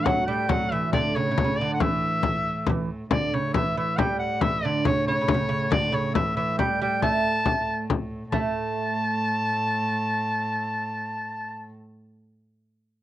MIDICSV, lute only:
0, 0, Header, 1, 2, 480
1, 0, Start_track
1, 0, Tempo, 434153
1, 546, Time_signature, 6, 3, 24, 8
1, 14405, End_track
2, 0, Start_track
2, 0, Title_t, "Lute"
2, 0, Program_c, 0, 24
2, 64, Note_on_c, 0, 54, 89
2, 303, Note_off_c, 0, 54, 0
2, 308, Note_on_c, 0, 55, 90
2, 538, Note_off_c, 0, 55, 0
2, 542, Note_on_c, 0, 54, 92
2, 792, Note_off_c, 0, 54, 0
2, 795, Note_on_c, 0, 52, 82
2, 1037, Note_off_c, 0, 52, 0
2, 1041, Note_on_c, 0, 50, 74
2, 1278, Note_off_c, 0, 50, 0
2, 1282, Note_on_c, 0, 49, 88
2, 1437, Note_off_c, 0, 49, 0
2, 1450, Note_on_c, 0, 49, 65
2, 1584, Note_off_c, 0, 49, 0
2, 1597, Note_on_c, 0, 49, 71
2, 1758, Note_off_c, 0, 49, 0
2, 1782, Note_on_c, 0, 50, 80
2, 1996, Note_off_c, 0, 50, 0
2, 2000, Note_on_c, 0, 52, 76
2, 2965, Note_off_c, 0, 52, 0
2, 2978, Note_on_c, 0, 52, 73
2, 3190, Note_off_c, 0, 52, 0
2, 3442, Note_on_c, 0, 50, 68
2, 3662, Note_off_c, 0, 50, 0
2, 3689, Note_on_c, 0, 49, 70
2, 3925, Note_off_c, 0, 49, 0
2, 3930, Note_on_c, 0, 52, 73
2, 4158, Note_off_c, 0, 52, 0
2, 4172, Note_on_c, 0, 52, 83
2, 4387, Note_off_c, 0, 52, 0
2, 4402, Note_on_c, 0, 55, 83
2, 4880, Note_on_c, 0, 52, 85
2, 4893, Note_off_c, 0, 55, 0
2, 5125, Note_off_c, 0, 52, 0
2, 5139, Note_on_c, 0, 50, 76
2, 5374, Note_off_c, 0, 50, 0
2, 5383, Note_on_c, 0, 49, 69
2, 5594, Note_off_c, 0, 49, 0
2, 5618, Note_on_c, 0, 49, 81
2, 5749, Note_off_c, 0, 49, 0
2, 5762, Note_on_c, 0, 49, 63
2, 5893, Note_off_c, 0, 49, 0
2, 5907, Note_on_c, 0, 49, 73
2, 6053, Note_off_c, 0, 49, 0
2, 6067, Note_on_c, 0, 49, 77
2, 6305, Note_off_c, 0, 49, 0
2, 6309, Note_on_c, 0, 50, 83
2, 6544, Note_off_c, 0, 50, 0
2, 6549, Note_on_c, 0, 49, 81
2, 6800, Note_off_c, 0, 49, 0
2, 6809, Note_on_c, 0, 52, 77
2, 7027, Note_off_c, 0, 52, 0
2, 7040, Note_on_c, 0, 52, 86
2, 7286, Note_off_c, 0, 52, 0
2, 7286, Note_on_c, 0, 55, 89
2, 7522, Note_off_c, 0, 55, 0
2, 7535, Note_on_c, 0, 55, 86
2, 7749, Note_off_c, 0, 55, 0
2, 7771, Note_on_c, 0, 57, 82
2, 8679, Note_off_c, 0, 57, 0
2, 9207, Note_on_c, 0, 57, 92
2, 13372, Note_off_c, 0, 57, 0
2, 14405, End_track
0, 0, End_of_file